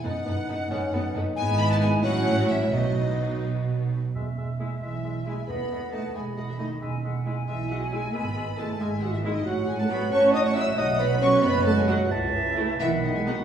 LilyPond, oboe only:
\new Staff \with { instrumentName = "Oboe" } { \time 6/8 \key e \major \tempo 4. = 90 r2. | r2. | r2. | e''8 e''8 e''8 e''8 e''8 e''8 |
dis''8 dis''8 dis''8 dis''8 dis''8 dis''8 | e''8 e''8 e''8 e''8 e''8 e''8 | e''8 e''8 e''8 e''8 e''8 e''8 | fis''4. fis''4. |
fis''4. fis''4. | a''4. b''4. | }